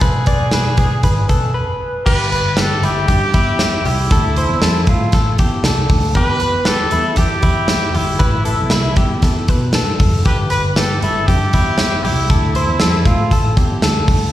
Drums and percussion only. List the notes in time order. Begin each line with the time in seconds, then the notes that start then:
0.01 kick, closed hi-hat
0.26 kick, closed hi-hat
0.51 snare, closed hi-hat
0.77 kick, closed hi-hat
1.03 kick, closed hi-hat
1.29 kick, closed hi-hat
2.06 kick, crash
2.32 closed hi-hat
2.57 snare, closed hi-hat
2.83 closed hi-hat
3.08 kick, closed hi-hat
3.34 kick, closed hi-hat
3.59 snare, closed hi-hat
3.85 open hi-hat
4.11 kick, closed hi-hat
4.36 closed hi-hat
4.62 snare, closed hi-hat
4.87 kick, closed hi-hat
5.12 kick, snare, closed hi-hat
5.38 kick, closed hi-hat
5.64 snare, closed hi-hat
5.90 kick, open hi-hat
6.15 kick, closed hi-hat
6.40 closed hi-hat
6.65 snare, closed hi-hat
6.91 closed hi-hat
7.16 kick, snare, closed hi-hat
7.42 kick, closed hi-hat
7.68 snare, closed hi-hat
7.94 open hi-hat
8.19 kick, closed hi-hat
8.45 closed hi-hat
8.70 snare, closed hi-hat
8.96 kick, closed hi-hat
9.22 kick, snare, closed hi-hat
9.48 kick, closed hi-hat
9.73 snare, closed hi-hat
10.00 kick, open hi-hat
10.25 kick, closed hi-hat
10.50 closed hi-hat
10.76 snare, closed hi-hat
11.02 closed hi-hat
11.28 kick, closed hi-hat
11.53 kick, closed hi-hat
11.78 snare, closed hi-hat
12.05 open hi-hat
12.30 kick, closed hi-hat
12.55 closed hi-hat
12.80 snare, closed hi-hat
13.05 kick, closed hi-hat
13.31 kick, closed hi-hat
13.57 kick, closed hi-hat
13.82 snare, closed hi-hat
14.08 kick, open hi-hat